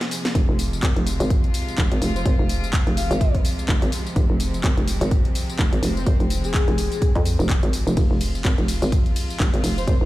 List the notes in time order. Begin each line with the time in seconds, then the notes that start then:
Already playing: C3 F3 G#3 G#4
0.01 snare, closed hi-hat
0.11 open hi-hat, tambourine
0.25 snare, closed hi-hat, tambourine
0.35 F1 F4, kick, closed hi-hat, tambourine
0.49 F1
0.59 open hi-hat, tambourine
0.73 tambourine
0.83 G#1, kick, clap, closed hi-hat
0.96 F1, closed hi-hat
1.07 open hi-hat, tambourine
1.20 G#1, closed hi-hat, tambourine
1.30 kick, closed hi-hat, tambourine
1.44 closed hi-hat
1.54 open hi-hat, tambourine
1.68 tambourine
1.78 F1, kick, clap, closed hi-hat
1.92 G#1, closed hi-hat
2.02 F1, open hi-hat, tambourine
2.16 C5, tambourine
2.26 G#1 C5, kick, closed hi-hat, tambourine
2.39 F1
2.49 open hi-hat, tambourine
2.64 tambourine
2.73 kick, clap, closed hi-hat
2.87 F1, closed hi-hat
2.97 F5, open hi-hat, tambourine
3.11 G#1, closed hi-hat, tambourine
3.21 kick, closed hi-hat, tambourine
3.35 kick, closed hi-hat
3.45 open hi-hat, tambourine
3.59 tambourine
3.69 F1, kick, clap, closed hi-hat, tambourine
3.82 G#1, closed hi-hat
3.92 open hi-hat, tambourine
4.07 tambourine
4.16 F1 C4, kick, closed hi-hat, tambourine
4.30 F1
4.40 open hi-hat, tambourine
4.54 tambourine
4.64 G#1, kick, clap, closed hi-hat
4.77 F1, closed hi-hat
4.88 open hi-hat, tambourine
5.01 G#1, closed hi-hat, tambourine
5.11 kick, closed hi-hat, tambourine
5.25 closed hi-hat
5.35 open hi-hat, tambourine
5.49 tambourine
5.59 F1, kick, clap, closed hi-hat
5.73 G#1, closed hi-hat
5.83 F1, open hi-hat, tambourine
5.97 C5, tambourine
6.07 G#1 C5, kick, closed hi-hat, tambourine
6.20 F1, closed hi-hat
6.30 open hi-hat, tambourine
6.44 G#4, closed hi-hat, tambourine
6.54 kick, clap, closed hi-hat, tambourine
6.68 F1, closed hi-hat
6.78 open hi-hat, tambourine
6.92 closed hi-hat, tambourine
7.02 kick, closed hi-hat, tambourine
7.15 F2, kick, closed hi-hat
7.25 open hi-hat, tambourine
7.39 F1, tambourine
7.49 kick, clap, closed hi-hat, tambourine
7.63 G#1, closed hi-hat
7.73 open hi-hat, tambourine
7.87 F1, tambourine
7.97 F1 F4, kick, closed hi-hat, ride, tambourine
8.11 F1
8.21 open hi-hat, ride, tambourine
8.35 tambourine
8.45 G#1, kick, clap, closed hi-hat, ride, tambourine
8.58 F1, closed hi-hat
8.68 open hi-hat, ride, tambourine
8.82 G#1, closed hi-hat, tambourine
8.92 kick, closed hi-hat, ride, tambourine
9.06 closed hi-hat
9.16 open hi-hat, ride, tambourine
9.30 tambourine
9.40 F1, kick, clap, closed hi-hat, ride, tambourine
9.54 G#1, closed hi-hat
9.64 F1, open hi-hat, ride, tambourine
9.77 C5, tambourine
9.88 G#1 C5, kick, closed hi-hat, ride, tambourine
10.01 F1